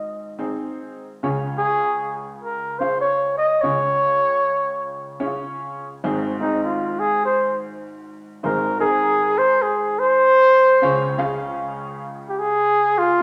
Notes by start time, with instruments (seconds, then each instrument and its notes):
Already playing: upright piano G#1 G#2, muted trumpet D#5
0.39 upright piano C4 D#4 G#4 C5
1.23 upright piano C#2 C#3 C#4 F4 G#4 C#5
1.58 muted trumpet G#4
2.43 muted trumpet A#4
2.79 upright piano C#4 F4 G#4 F5, muted trumpet C5
3.01 muted trumpet C#5
3.38 muted trumpet D#5
3.61 upright piano C#2 C#3 C#4 F4 G#4 C#5, muted trumpet C#5
5.20 upright piano C#4 E4 G#4 C#5
5.26 upright piano F4
6.04 upright piano G#1 G#2 C4 D#4 G#4 C5
6.40 upright piano C4 D#4 G#4 C5, muted trumpet D#4
6.64 muted trumpet F4
7.00 muted trumpet G#4
7.25 muted trumpet C5
8.43 upright piano G#1 G#2 C4 D#4 G#4 C5, muted trumpet A#4
8.79 upright piano C4 D#4 G#4 A#4, muted trumpet G#4
9.38 muted trumpet C5
9.62 muted trumpet G#4
9.99 muted trumpet C5
10.82 upright piano C#2 C#3 C#4 F4 G#4 C#5
11.18 upright piano C#4 F4 G#4 F5
12.29 muted trumpet G4
12.39 muted trumpet G#4
12.98 muted trumpet F4